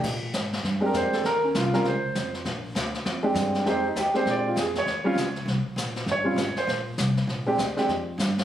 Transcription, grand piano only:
0, 0, Header, 1, 2, 480
1, 0, Start_track
1, 0, Tempo, 302115
1, 59, Time_signature, 4, 2, 24, 8
1, 13409, End_track
2, 0, Start_track
2, 0, Title_t, "Grand piano"
2, 0, Program_c, 0, 0
2, 1281, Note_on_c, 0, 56, 55
2, 1288, Note_on_c, 0, 60, 48
2, 1305, Note_on_c, 0, 62, 52
2, 1309, Note_on_c, 0, 67, 64
2, 1366, Note_on_c, 0, 70, 70
2, 1519, Note_off_c, 0, 70, 0
2, 1532, Note_on_c, 0, 72, 73
2, 1803, Note_off_c, 0, 72, 0
2, 1811, Note_on_c, 0, 69, 71
2, 1925, Note_off_c, 0, 56, 0
2, 1928, Note_off_c, 0, 60, 0
2, 1936, Note_off_c, 0, 62, 0
2, 1938, Note_off_c, 0, 67, 0
2, 1981, Note_off_c, 0, 69, 0
2, 1999, Note_on_c, 0, 70, 79
2, 2276, Note_off_c, 0, 70, 0
2, 2295, Note_on_c, 0, 61, 53
2, 2463, Note_off_c, 0, 61, 0
2, 2487, Note_on_c, 0, 65, 68
2, 2752, Note_on_c, 0, 55, 65
2, 2761, Note_off_c, 0, 65, 0
2, 2761, Note_on_c, 0, 60, 58
2, 2765, Note_on_c, 0, 70, 80
2, 2770, Note_on_c, 0, 61, 59
2, 2788, Note_on_c, 0, 65, 74
2, 2918, Note_off_c, 0, 55, 0
2, 2923, Note_off_c, 0, 60, 0
2, 2927, Note_off_c, 0, 61, 0
2, 2936, Note_off_c, 0, 65, 0
2, 2938, Note_off_c, 0, 70, 0
2, 2985, Note_on_c, 0, 72, 73
2, 3685, Note_off_c, 0, 72, 0
2, 5129, Note_on_c, 0, 56, 65
2, 5137, Note_on_c, 0, 60, 56
2, 5148, Note_on_c, 0, 62, 59
2, 5156, Note_on_c, 0, 67, 65
2, 5769, Note_off_c, 0, 56, 0
2, 5772, Note_off_c, 0, 60, 0
2, 5778, Note_off_c, 0, 62, 0
2, 5782, Note_off_c, 0, 67, 0
2, 5813, Note_on_c, 0, 60, 59
2, 5814, Note_on_c, 0, 56, 63
2, 5829, Note_on_c, 0, 63, 58
2, 5839, Note_on_c, 0, 67, 72
2, 5863, Note_on_c, 0, 72, 69
2, 6082, Note_off_c, 0, 60, 0
2, 6083, Note_off_c, 0, 56, 0
2, 6090, Note_off_c, 0, 63, 0
2, 6095, Note_off_c, 0, 67, 0
2, 6129, Note_off_c, 0, 72, 0
2, 6147, Note_on_c, 0, 63, 55
2, 6309, Note_off_c, 0, 63, 0
2, 6339, Note_on_c, 0, 67, 69
2, 6574, Note_on_c, 0, 56, 62
2, 6579, Note_off_c, 0, 67, 0
2, 6590, Note_on_c, 0, 60, 58
2, 6603, Note_on_c, 0, 62, 55
2, 6603, Note_on_c, 0, 67, 70
2, 6613, Note_on_c, 0, 72, 77
2, 6782, Note_off_c, 0, 72, 0
2, 6845, Note_on_c, 0, 74, 79
2, 7100, Note_off_c, 0, 74, 0
2, 7117, Note_on_c, 0, 65, 59
2, 7211, Note_off_c, 0, 56, 0
2, 7219, Note_off_c, 0, 60, 0
2, 7225, Note_off_c, 0, 62, 0
2, 7225, Note_off_c, 0, 67, 0
2, 7274, Note_off_c, 0, 65, 0
2, 7300, Note_on_c, 0, 68, 63
2, 7567, Note_off_c, 0, 68, 0
2, 7601, Note_on_c, 0, 73, 72
2, 8012, Note_on_c, 0, 55, 72
2, 8022, Note_on_c, 0, 60, 62
2, 8031, Note_on_c, 0, 61, 64
2, 8045, Note_on_c, 0, 65, 81
2, 8188, Note_off_c, 0, 55, 0
2, 8193, Note_off_c, 0, 60, 0
2, 8198, Note_off_c, 0, 61, 0
2, 8205, Note_off_c, 0, 65, 0
2, 8658, Note_off_c, 0, 73, 0
2, 9716, Note_on_c, 0, 73, 71
2, 9912, Note_on_c, 0, 55, 60
2, 9924, Note_on_c, 0, 60, 55
2, 9933, Note_on_c, 0, 61, 52
2, 9945, Note_on_c, 0, 65, 66
2, 10099, Note_off_c, 0, 55, 0
2, 10105, Note_off_c, 0, 60, 0
2, 10109, Note_off_c, 0, 61, 0
2, 10115, Note_off_c, 0, 65, 0
2, 10411, Note_off_c, 0, 73, 0
2, 10451, Note_on_c, 0, 72, 79
2, 10621, Note_off_c, 0, 72, 0
2, 11859, Note_on_c, 0, 56, 66
2, 11866, Note_on_c, 0, 60, 62
2, 11873, Note_on_c, 0, 62, 61
2, 11882, Note_on_c, 0, 67, 74
2, 12032, Note_off_c, 0, 56, 0
2, 12036, Note_off_c, 0, 60, 0
2, 12039, Note_off_c, 0, 62, 0
2, 12044, Note_off_c, 0, 67, 0
2, 12334, Note_on_c, 0, 56, 67
2, 12337, Note_on_c, 0, 60, 64
2, 12348, Note_on_c, 0, 62, 60
2, 12364, Note_on_c, 0, 67, 69
2, 12510, Note_off_c, 0, 56, 0
2, 12511, Note_off_c, 0, 60, 0
2, 12517, Note_off_c, 0, 62, 0
2, 12525, Note_off_c, 0, 67, 0
2, 13409, End_track
0, 0, End_of_file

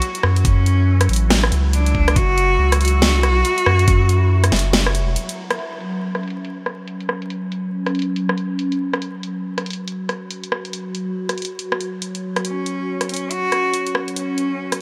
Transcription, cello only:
0, 0, Header, 1, 2, 480
1, 0, Start_track
1, 0, Tempo, 428571
1, 503, Time_signature, 4, 2, 24, 8
1, 16594, End_track
2, 0, Start_track
2, 0, Title_t, "Cello"
2, 0, Program_c, 0, 42
2, 0, Note_on_c, 0, 66, 109
2, 218, Note_off_c, 0, 66, 0
2, 501, Note_on_c, 0, 61, 91
2, 1417, Note_off_c, 0, 61, 0
2, 1940, Note_on_c, 0, 62, 100
2, 2420, Note_on_c, 0, 66, 120
2, 2437, Note_off_c, 0, 62, 0
2, 3135, Note_off_c, 0, 66, 0
2, 3141, Note_on_c, 0, 66, 122
2, 5737, Note_off_c, 0, 66, 0
2, 13943, Note_on_c, 0, 61, 91
2, 14618, Note_off_c, 0, 61, 0
2, 14661, Note_on_c, 0, 61, 92
2, 14899, Note_on_c, 0, 66, 116
2, 14916, Note_off_c, 0, 61, 0
2, 15621, Note_off_c, 0, 66, 0
2, 15862, Note_on_c, 0, 61, 88
2, 16594, Note_off_c, 0, 61, 0
2, 16594, End_track
0, 0, End_of_file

